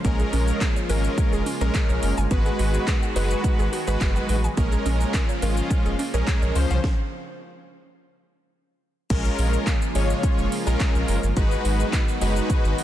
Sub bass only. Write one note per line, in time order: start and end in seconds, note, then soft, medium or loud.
0.05 0.23 A#1 loud
0.33 0.52 A#1 loud
0.90 1.08 G#1 medium
1.33 1.42 F1 loud
1.61 1.70 A#1 medium
1.89 1.98 A#1 medium
2.03 2.13 F#1 medium
2.18 2.27 G1 loud
2.31 2.50 G#1 loud
2.59 2.78 G#1 loud
3.16 3.35 F#1 medium
3.59 3.68 G#1 medium
3.88 3.96 G#1 medium
4.01 4.20 F#1 medium
4.29 4.48 A1 medium
4.57 4.76 A#1 loud
4.86 5.04 A#1 loud
5.42 5.61 G#1 medium
5.86 5.94 F1 medium
6.14 6.23 A#1 medium
6.42 6.51 A#1 loud
6.55 6.65 C#2 loud
6.71 6.79 C2 loud
9.10 9.29 A#1 loud
9.39 9.57 A#1 loud
9.95 10.14 G#1 medium
10.38 10.47 F1 loud
10.67 10.76 A#1 medium
10.95 11.04 A#1 medium
11.08 11.18 F#1 medium
11.23 11.32 G1 loud
11.37 11.55 G#1 loud
11.65 11.84 G#1 loud
12.22 12.40 F#1 medium
12.65 12.74 G#1 medium